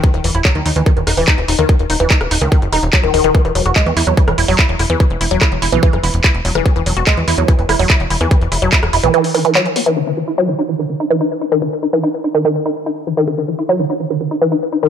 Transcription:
<<
  \new Staff \with { instrumentName = "Synth arpeggio sound" } { \clef bass \time 4/4 \key fes \lydian \tempo 4 = 145 ees16 ees16 fes16 fes'16 ges16 ees16 ees'16 fes16 ees16 ees16 ees'16 fes16 ees'16 r16 ees'16 ees16 | ees16 r16 ees'16 fes16 ees'16 r16 ees'16 ees16 ees16 r16 ees'16 r16 ges16 ees16 ees16 ees16 | e16 e16 ges16 ges'16 aes16 e16 e'16 ges16 e16 e16 e'16 ges16 e'16 r16 e'16 e16 | e16 r16 e'16 ges16 e'16 r16 e'16 e16 e16 r16 e'16 r16 e'16 r16 ges16 e16 |
e16 e16 ges16 ges'16 aes16 e16 e'16 ges16 e16 e16 e'16 ges16 e'16 r16 e'16 e16 | e16 r16 e'16 ges16 e'16 r16 e'16 e16 e16 r16 e16 e16 ges16 r16 b16 e16 | ees16 ees16 fes16 fes'16 ges16 ees16 ees'16 fes16 ees16 ees16 ees'16 fes16 ees'16 r16 ees'16 ees16 | ees16 r16 ees'16 fes16 ees'16 r16 ees'16 ees16 ees16 r16 ees'16 r16 ees'16 r16 fes16 ees16 |
ees16 ees16 fes16 fes'16 ges16 ees16 ees'16 fes16 ees16 ees16 ees'16 fes16 ees'16 r16 ees'16 ees16 | }
  \new Staff \with { instrumentName = "Analog synth bass" } { \clef bass \time 4/4 \key fes \lydian r16 ees,,16 ees,,16 ees,,16 r16 ees,16 ees,16 ees,16 r16 ees,,16 ees,,16 ees,,16 r16 ees,,16 ees,,16 ees,16 | r16 ees,,16 ees,,16 ees,,16 r16 ees,,16 ees,,16 des,16 r16 ges,,16 ees,,16 ees,,16 r16 ees,,16 ees,,16 ees,,16 | r16 e,,16 e,,16 e,,16 r16 e,16 e,16 e,16 r16 e,,16 e,,16 e,,16 r16 e,,16 e,,16 e,16 | r16 e,,16 e,,16 e,,16 r16 e,,16 e,,16 b,,16 r16 ges,,16 e,,16 e,,16 r16 e,,16 e,,16 e,,16 |
r16 e,,16 e,,16 e,,16 r16 e,16 e,16 e,16 r16 e,,16 e,,16 e,,16 r16 e,,16 e,,16 e,16 | r16 e,,16 e,,16 e,,16 r16 e,,16 e,,16 b,,16 r2 | r1 | r1 |
r1 | }
  \new DrumStaff \with { instrumentName = "Drums" } \drummode { \time 4/4 <hh bd>16 hh16 hho16 hh16 <hc hh bd ss>16 hh16 hho16 hh16 <hh bd>16 hh16 <hho ss>16 hho16 <hc hh bd>16 hh16 hho16 <hh ss>16 | <hh bd>16 hh16 hho16 hh16 <hc hh bd>16 <hh ss>16 hho16 hh16 <hh bd>16 hh16 <hho ss>16 hh16 <hc hh bd>16 hh16 hho16 hh16 | <hh bd>16 hh16 hho16 <hh ss>16 <hc hh bd>16 hh16 hho16 hh16 <hh bd>16 <hh ss>16 hho16 hho16 <hc hh bd>16 hh16 <hho ss>16 hh16 | <hh bd>16 hh16 hho16 hh16 <hc hh bd ss>16 hh16 hho16 hh16 <hh bd>16 <hh ss>16 hho16 hh16 <hc hh bd>16 hh16 hho16 <hh ss>16 |
<hh bd>16 hh16 hho16 hh16 <hc hh bd ss>16 hh16 hho16 hh16 <hh bd>16 hh16 <hho ss>16 hho16 <hc bd>16 hh16 hho16 <hh ss>16 | <hh bd>16 hh16 hho16 hh16 <hc hh bd>16 <hh ss>16 hho16 hh16 hh16 hho16 <hho ss>16 hh16 <hc hh>16 hh16 hho16 hh16 | r4 r4 r4 r4 | r4 r4 r4 r4 |
r4 r4 r4 r4 | }
>>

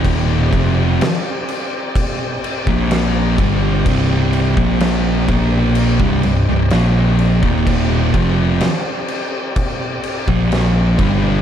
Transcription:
<<
  \new Staff \with { instrumentName = "Tonewheel organ" } { \time 4/4 \key c \minor \tempo 4 = 63 <c' g' d''>1~ | <c' g' d''>1~ | <c' g' d''>1 | }
  \new Staff \with { instrumentName = "Distorted electric guitar" } { \clef bass \time 4/4 \key c \minor <ees, bes, ees>8 <f, c f>8 r4. r16 <bes, f bes>8. <g, d g>8 | <c, g, c>8. <bes, f bes>8. <bes, f bes>8. <c, g,>16 <c, g,>16 <c, g,>16 <bes, f bes>8. <ees, bes, ees>16~ | <ees, bes, ees>8 <f, c f>8 r4. r16 <bes, f bes>8. <g, d g>8 | }
  \new Staff \with { instrumentName = "Distorted electric guitar" } { \clef bass \time 4/4 \key c \minor <ees, bes, ees>8 <f, c f>8 r4. r16 <bes, f bes>8. <g, d g>8 | <c, g, c>8. <bes, f bes>8. <bes, f bes>8. <c, g,>16 <c, g,>16 <c, g,>16 <bes, f bes>8. <ees, bes, ees>16~ | <ees, bes, ees>8 <f, c f>8 r4. r16 <bes, f bes>8. <g, d g>8 | }
  \new Staff \with { instrumentName = "Fingered electric bass" } { \clef bass \time 4/4 \key c \minor ees,,8 f,,8 r4. r16 bes,,8. g,,8 | c,,8. bes,,8. bes,,8. c,,16 c,,16 c,,16 bes,,8. ees,,16~ | ees,,8 f,,8 r4. r16 bes,,8. g,,8 | }
  \new DrumStaff \with { instrumentName = "Drums" } \drummode { \time 4/4 <cymc bd>8 <cymc bd>8 <cymc sn>8 cymc8 <cymc bd>8 cymc16 bd16 <cymc sn>8 <cymc bd>8 | <cymc bd>8 cymc16 bd16 <cymc sn>8 <cymc bd>8 cymc16 bd16 cymc8 <cymc sn>8 cymc16 bd16 | <cymc bd>8 <cymc bd>8 <cymc sn>8 cymc8 <cymc bd>8 cymc16 bd16 <cymc sn>8 <cymc bd>8 | }
>>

